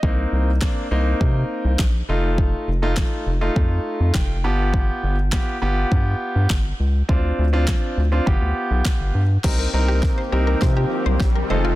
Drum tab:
CC |--------|--------|--------|--------|
CP |--x---x-|--x---x-|--x---x-|--x---x-|
SD |--o---o-|--o---o-|--o---o-|--o---o-|
BD |o-o-o-o-|o-o-o-o-|o-o-o-o-|o-o-o-o-|

CC |x-------|
CP |--------|
SD |o-o-o-o-|
BD |o-o-o-o-|